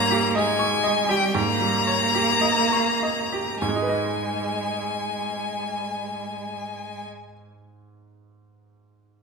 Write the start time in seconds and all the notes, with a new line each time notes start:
Already playing: G#2 G3 A#3 C#5 A#5
0.11 G4
0.36 G#3 D#5 G#5
0.59 C#6
0.84 D#5
1.09 G3 G4 G5
1.34 G#2 A#3 A#5
1.60 G3
1.87 C#5
2.15 G4
2.41 D#5
2.72 C#6
3.03 D#5
3.32 G4
3.61 G#2 G#3 G#5
3.69 G#3
3.76 D#4
3.82 B4
3.89 D#5